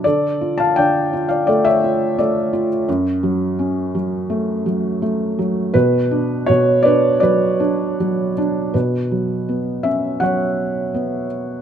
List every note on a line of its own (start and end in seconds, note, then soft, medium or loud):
0.04 0.76 D3 medium
0.04 0.56 A4 medium
0.04 0.60 D5 medium
0.41 1.12 F4 soft
0.58 0.76 F5 medium
0.58 0.76 A5 medium
0.76 2.14 D3 medium
0.76 1.27 D5 medium
0.76 1.26 G5 medium
1.13 1.82 F4 soft
1.29 1.45 D5 medium
1.29 1.47 F5 medium
1.47 2.17 A3 medium
1.47 1.65 A4 medium
1.47 1.65 D5 medium
1.65 2.14 C#5 medium
1.65 2.19 E5 medium
1.84 2.52 F4 medium
2.19 2.86 A3 medium
2.19 2.67 A4 medium
2.19 2.67 D5 medium
2.53 2.87 F4 medium
2.88 5.71 F#2 medium
3.23 3.93 F#3 medium
3.59 4.98 C#4 medium
3.95 4.64 F#3 medium
4.30 5.01 A3 medium
4.66 5.37 F#3 medium
5.02 5.73 A3 medium
5.39 5.74 F#3 medium
5.74 6.48 B2 medium
5.74 6.44 F#4 medium
5.74 6.49 B4 medium
6.11 6.84 D4 medium
6.46 7.96 B2 medium
6.46 6.82 F#4 medium
6.46 6.85 C#5 medium
6.83 7.58 D4 medium
6.83 7.19 B4 medium
6.83 7.19 D5 medium
7.20 7.99 F#3 medium
7.20 8.34 B4 medium
7.20 8.33 D5 medium
7.60 8.36 D4 medium
8.00 8.73 F#3 medium
8.38 8.74 D4 medium
8.74 11.62 B2 medium
8.74 10.18 F#4 soft
8.74 9.88 B4 medium
9.12 10.19 F#3 soft
9.49 10.91 B3 soft
9.83 11.26 C#4 soft
9.83 10.22 E5 medium
10.20 11.62 F#3 soft
10.20 11.62 C#5 medium
10.20 11.26 F#5 medium
10.94 11.62 B3 soft